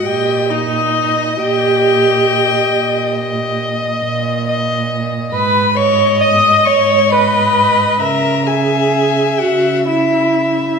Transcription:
X:1
M:12/8
L:1/8
Q:3/8=45
K:D#phr
V:1 name="Violin"
=g d2 g4- g z4 | b c' d' c' b2 a g2 f e2 |]
V:2 name="Violin"
d d3 d3 d3 d2 | z d3 d2 e e3 e2 |]
V:3 name="Viola"
=G D2 G4- G z4 | B c d c B2 A G2 F E2 |]
V:4 name="Cello" clef=bass
A,,3 A,,3 A,,3 A,,3 | G,,3 G,,3 C,3 C,3 |]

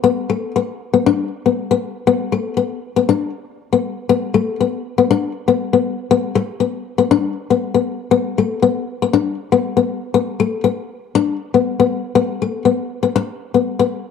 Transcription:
X:1
M:4/4
L:1/16
Q:"Swing 16ths" 1/4=119
K:Bphr
V:1 name="Steel-string acoustic guitar"
B,2 A,2 B,2 z B, D2 z B,2 B,2 z | B,2 A,2 B,2 z B, D2 z3 B,2 z | B,2 A,2 B,2 z B, D2 z B,2 B,2 z | B,2 z2 B,2 z B, D2 z B,2 B,2 z |
B,2 A,2 B,2 z B, D2 z B,2 B,2 z | B,2 A,2 B,2 z2 D2 z B,2 B,2 z | B,2 A,2 B,2 z B, z3 B,2 B,2 z |]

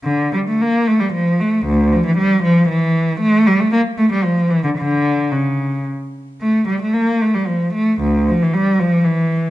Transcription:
X:1
M:3/4
L:1/16
Q:1/4=114
K:Dm
V:1 name="Cello" clef=bass
D,2 G, A, B,2 A, G, F,2 A,2 | D,,2 F, E, G,2 F,2 E,4 | A,2 G, A, B,2 A, G, F,2 E, D, | D,4 ^C,4 z4 |
A,2 G, A, B,2 A, G, F,2 A,2 | D,,2 F, E, G,2 F,2 E,4 |]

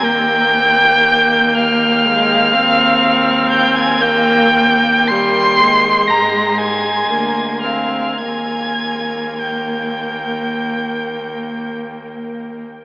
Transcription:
X:1
M:4/4
L:1/16
Q:1/4=57
K:Eb
V:1 name="Violin"
g'6 f'8 g' a' | g'4 c''4 b'2 a'4 f'2 | a'4 g'8 z4 |]
V:2 name="Violin"
g6 f8 g a | g4 c'4 b2 a4 f2 | a4 g8 z4 |]
V:3 name="Viola"
B,8 A,2 C6 | B,2 B,2 G,2 A,6 B,2 C2 | B,16 |]
V:4 name="Cello" clef=bass
E,,16- | E,,8 A,,4 D,,4 | E,,16 |]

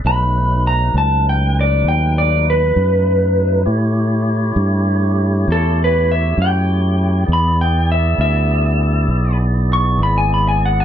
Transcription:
X:1
M:12/8
L:1/16
Q:3/8=66
K:Bdor
V:1 name="Clean electric guitar"
b4 ^a2 =a2 =g2 d2 g2 d2 B8 | z12 A2 B2 e2 =g6 | b2 =g2 e2 e8 z2 c'2 b ^g b g f g |]
V:2 name="Tonewheel organ"
[F,A,^DB]24 | [A,E=Gc]24 | [B,EGd]24 |]
V:3 name="Fingered electric bass" clef=bass
B,,,6 C,,6 ^D,,6 F,,6 | A,,6 =G,,6 E,,6 F,,6 | E,,6 D,,6 B,,,6 G,,,6 |]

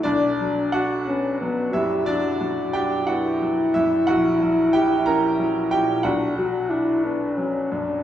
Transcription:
X:1
M:12/8
L:1/8
Q:3/8=60
K:Bm
V:1 name="French horn"
D2 z C B, G F3 E3- | E6 D F E D C D |]
V:2 name="Grand piano"
[Dd]2 [Ff]3 [Ee] [Dd]2 [Gg] [Ff]2 [Ee] | [Ff]2 [Gg] [^A^a]2 [Gg] [Ff]4- [Ff] z |]
V:3 name="Grand piano" clef=bass
B,,, F, D B, F, F,, F, F,, D B, F, F,, | ^A,,, F, E C F, ^A,, B,,, F, D B, F, F,, |]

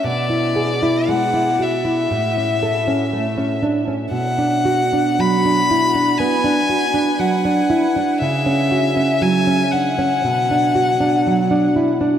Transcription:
X:1
M:4/4
L:1/16
Q:1/4=59
K:Bdor
V:1 name="Violin"
d4 f2 e8 z2 | f4 b4 g4 f4 | e4 g2 f8 z2 |]
V:2 name="Nylon-string guitar"
B,, E G E G, E F E A,, C A C A, C D C | B,, D F D F, D E D B, D F D F, D E D | C, C F C F, C D C B,, D F D F, D E D |]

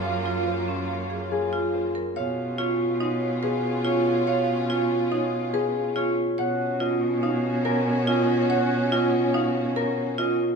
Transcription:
X:1
M:5/4
L:1/8
Q:1/4=142
K:Gblyd
V:1 name="Harp"
[Acdf]2 c2 d2 A2 c2 | [K:C#mix] e2 c2 d2 G2 c2 | e2 c2 d2 G2 c2 | f2 d2 e2 A2 d2 |
f2 d2 e2 A2 d2 |]
V:2 name="Marimba"
z F z D z A z F z B | [K:C#mix] c z E z D z B z E z | c z E z D z B z E z | c z E z D z A z E z |
c z E z D z A z E z |]
V:3 name="Soprano saxophone"
F8- F z | [K:C#mix] E8- E2- | E8- E z | C8- C2- |
C8- C z |]
V:4 name="String section"
[B,F]8- [B,F] z | [K:C#mix] [CE]8- [CE]2- | [CE]8- [CE] z | [CF]8- [CF]2- |
[CF]8- [CF] z |]
V:5 name="Cello" clef=bass
G,,8- G,,2 | [K:C#mix] B,,8- B,,2- | B,,8- B,,2 | B,,8- B,,2- |
B,,8- B,,2 |]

